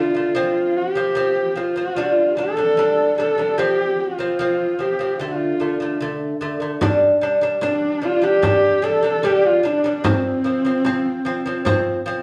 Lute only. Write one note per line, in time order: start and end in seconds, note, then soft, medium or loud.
0.00 0.11 D3 medium
0.00 0.12 A3 medium
0.15 0.32 D3 medium
0.15 0.32 A3 medium
0.35 0.84 F3 medium
0.35 0.85 C4 loud
0.95 1.12 F3 medium
0.95 1.13 C4 medium
1.15 1.48 F3 medium
1.15 1.49 C4 medium
1.56 1.73 F3 medium
1.56 1.73 C4 medium
1.76 1.93 F3 medium
1.76 1.94 C4 medium
1.96 2.29 G3 medium
1.96 2.30 D4 medium
2.37 2.54 G3 medium
2.37 2.54 D4 medium
2.57 2.74 G3 medium
2.57 2.74 D4 medium
2.77 3.10 G3 medium
2.77 3.11 D4 medium
3.18 3.34 G3 medium
3.18 3.35 D4 medium
3.38 3.54 G3 medium
3.38 3.55 D4 medium
3.58 4.07 F3 medium
3.58 4.07 C4 loud
4.19 4.35 F3 medium
4.19 4.36 C4 medium
4.39 4.72 F3 medium
4.39 4.72 C4 medium
4.79 4.96 F3 medium
4.79 4.96 C4 medium
4.99 5.16 F3 medium
4.99 5.17 C4 medium
5.19 5.52 D3 medium
5.19 5.53 A3 medium
5.60 5.76 D3 medium
5.60 5.77 A3 medium
5.80 5.97 D3 medium
5.80 5.98 A3 medium
6.00 6.33 D3 medium
6.00 6.34 A3 medium
6.41 6.57 D3 medium
6.41 6.58 A3 medium
6.60 6.77 D3 medium
6.60 6.78 A3 medium
6.81 7.14 G3 loud
6.81 7.14 D4 loud
7.21 7.38 G3 medium
7.21 7.39 D4 medium
7.41 7.58 G3 medium
7.41 7.59 D4 medium
7.61 7.94 G3 medium
7.61 7.95 D4 loud
8.02 8.18 G3 medium
8.02 8.19 D4 medium
8.22 8.39 G3 medium
8.22 8.39 D4 medium
8.42 8.75 G3 medium
8.42 8.76 D4 loud
8.82 8.99 G3 medium
8.82 9.00 D4 medium
9.03 9.19 G3 medium
9.03 9.20 D4 medium
9.23 9.56 G3 medium
9.23 9.57 D4 medium
9.63 9.80 G3 medium
9.63 9.81 D4 medium
9.84 10.00 G3 medium
9.84 10.01 D4 medium
10.04 10.37 F3 medium
10.04 10.37 C4 loud
10.44 10.61 F3 medium
10.44 10.62 C4 medium
10.65 10.81 F3 medium
10.65 10.82 C4 medium
10.84 11.17 F3 medium
10.84 11.18 C4 medium
11.25 11.42 F3 medium
11.25 11.42 C4 medium
11.46 11.62 F3 medium
11.46 11.63 C4 medium
11.65 11.98 F3 loud
11.65 11.99 C4 loud
12.06 12.22 F3 medium
12.06 12.22 C4 medium